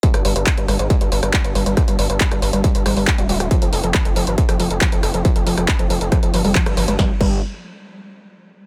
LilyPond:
<<
  \new Staff \with { instrumentName = "Synth arpeggio sound" } { \clef bass \time 4/4 \key c \minor \tempo 4 = 138 g16 r16 g16 g16 r16 g16 g16 r16 g16 g16 r16 g16 g16 r16 g16 g16 | r16 g16 g16 r16 g16 g16 r16 g16 g16 r16 g16 g16 r16 g16 g16 r16 | f16 f16 r16 f16 f16 r16 f16 f16 r16 f16 f16 r16 f16 f16 r16 f16 | f16 r16 f16 f16 r16 f16 f16 r16 f16 f16 f16 g16 f16 r16 f16 aes16 |
g16 r16 g8 r2. | }
  \new Staff \with { instrumentName = "Analog synth bass" } { \clef bass \time 4/4 \key c \minor r16 g,,16 g,,16 g,,16 r16 g,,16 g,,16 aes,,16 r16 g,,16 g,,16 g,,16 r16 g,,16 g,,16 g,,16 | r16 g,,16 g,,16 g,,16 r16 g,,16 g,,16 g,,16 r16 g,,16 aes,,16 g,,16 r16 d,,16 d,,16 d,,16 | r16 f,,16 f,,16 f,,16 r16 f,,16 f,,16 g,,16 r16 f,,16 f,,16 f,,16 r16 f,,16 f,,16 f,,16 | r16 f,,16 f,,16 f,,16 r16 f,,16 f,,16 f,,16 r16 f,,16 g,,16 f,,16 r16 g,,16 g,,16 g,,16 |
g,,16 r16 g,,8 r2. | }
  \new DrumStaff \with { instrumentName = "Drums" } \drummode { \time 4/4 <hh bd>16 <hh ss>16 hho16 hh16 <hc hh bd>16 hh16 <hho ss>16 hh16 <hh bd>16 hh16 hho16 <hh ss>16 <hc hh bd>16 hh16 hho16 hh16 | <hh bd ss>16 hh16 hho16 hh16 <hc hh bd>16 <hh ss>16 hho16 hh16 <hh bd>16 hh16 <hho ss>16 hho16 <hc hh bd>16 hh16 hho16 <hh ss>16 | <hh bd>16 hh16 hho16 hh16 <hc hh bd ss>16 hh16 hho16 hh16 <hh bd>16 <hh ss>16 hho16 hh16 <hc hh bd>16 hh16 <hho ss>16 hh16 | <hh bd>16 hh16 hho16 <hh ss>16 <hc hh bd>16 hh16 hho16 hh16 <hh bd ss>16 hh16 hho16 hho16 <hc hh bd>16 <hh ss>16 hho16 hh16 |
<bd sn>8 <cymc bd>8 r4 r4 r4 | }
>>